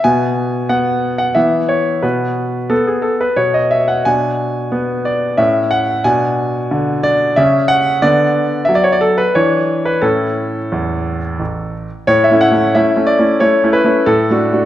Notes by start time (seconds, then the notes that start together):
0.04 B2 B3 G#5
0.69 B3 F#5
1.18 F#5
1.35 E3 B3 E5
1.69 C#5
2.02 B2 B3 B4
2.70 B3 A4
2.87 G#4
3.02 A4
3.21 B4
3.36 B2 B3 C#5
3.54 D#5
3.71 E5
3.88 F#5
4.05 B2 D4 G#5
4.72 B3
5.05 D5
5.37 A2 C#4 E5
5.71 F#5
6.04 B2 D4 G#5
6.71 D3
7.03 D5
7.36 C#3 C#4 E5
7.68 F#5
8.02 D3 B3 D5
8.65 F#3 E5
8.75 D5
8.84 C#5
8.92 D5
9.01 A4
9.18 B4
9.35 E3 D4 C#5
9.85 B4
10.02 A2 C#4 E4 A4
10.72 E2
11.39 A1
12.07 A2 C#5
12.24 E5
12.30 A3 C#4 E4
12.41 F#5
12.51 A3 C#4 E4
12.75 A3 C#4 E4 E5
12.97 A3 C#4 E4
13.07 D5
13.19 A3 C#4 E4
13.40 A3 C#4 E4 C#5
13.64 A3 C#4 E4
13.73 B4
13.84 A3 C#4 E4
14.06 A2 A4
14.30 A3 D4 F#4
14.53 A3 D4 F#4